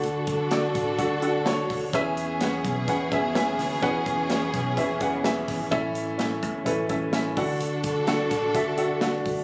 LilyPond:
<<
  \new Staff \with { instrumentName = "Grand piano" } { \time 4/4 \key d \lydian \tempo 4 = 127 <d' fis' a' fis''>8. r16 <d' fis' a' d''>4 <d' fis' a' fis''>8 <d' fis' a' fis''>8 <d' fis' a' cis''>4 | <cis' gis' b' e''>4 <cis' gis' b' fis''>4 <cis' gis' b' fis''>8 <cis' gis' b' e''>8 <cis' gis' b' e''>4 | <cis' gis' b' fis''>4 <cis' gis' b' cis''>4 <cis' gis' b' e''>8 <cis' gis' b' fis''>8 <cis' gis' b' e''>4 | <cis' e' a' e''>4 <cis' e' a' e''>4 <cis' e' a' b'>8 <cis' e' a' e''>8 <cis' e' a' e''>8 <d' fis' a' fis''>8~ |
<d' fis' a' fis''>8. r16 <d' fis' a' fis''>4 <d' fis' a' e''>8 <d' fis' a' fis''>8 <d' fis' a' fis''>4 | }
  \new Staff \with { instrumentName = "Grand piano" } { \clef bass \time 4/4 \key d \lydian d4 r2. | e4. r2 r8 | e4. r2 r8 | a,4. r2 d8~ |
d4 r2. | }
  \new Staff \with { instrumentName = "String section" } { \time 4/4 \key d \lydian << { <d' fis' a'>1 | <b cis' gis'>1~ | <b cis' gis'>1 | a2.~ a8 <d' fis' a'>8~ |
<d' fis' a'>1 | } \\ { d1 | e1~ | e1~ | e2.~ e8 d8~ |
d1 | } >> }
  \new Staff \with { instrumentName = "Fingered electric bass" } { \clef bass \time 4/4 \key d \lydian d,4. a,,8 d,4. d,8 | e,4. b,,8 e,4. d,8 | e,4. b,,8 e,4. gis,,8 | a,,4. e,8 a,,4. d,8 |
d,4. a,,8 d,4. d,8 | }
  \new DrumStaff \with { instrumentName = "Drums" } \drummode { \time 4/4 hh8 <hh bd>8 <hh sn>8 <hh bd>8 <hh bd>8 hh8 <hh sn>8 <hho bd>8 | <hh bd>8 hh8 <hh sn>8 <hh bd>8 <hh bd>8 <hh bd>8 <hh sn>8 <hho sn>8 | <hh bd>8 <hh bd>8 <hh sn>8 <hh bd>8 <hh bd>8 <hh bd>8 <hh sn>8 <hho bd sn>8 | <hh bd>8 hh8 <hh sn>8 <hh bd>8 <hh bd>8 <hh bd>8 <hh sn>8 <hho bd>8 |
hh8 <hh bd>8 <hh sn>8 <hh bd>8 <hh bd>8 hh8 <hh sn>8 <hho bd>8 | }
>>